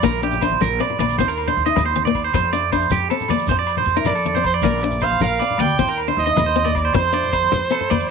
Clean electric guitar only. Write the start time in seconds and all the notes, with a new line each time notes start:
0.04 A#4
0.23 G4
0.43 C5
0.61 A#4
0.81 D5
0.99 D5
1.19 C5
1.28 A#4
1.48 C5
1.66 D#5
1.86 C5
2.05 D5
2.24 C5
2.34 C5
2.53 D5
2.72 C5
2.92 G4
3.10 A4
3.30 D5
3.49 C5
3.59 D5
3.78 C5
3.96 A#4
4.16 A4
4.35 C5
4.54 D5
4.63 A#4
4.83 muted clean electric guitar stroke
5.02 C5
5.22 A#4
5.39 D5
5.59 D5
5.79 C5
5.89 A#4
6.08 C5
6.26 D#5
6.46 C5
6.65 D5
6.85 C5
6.94 C5
7.14 D5
7.33 C5
7.52 muted clean electric guitar stroke
7.72 A4
7.90 D5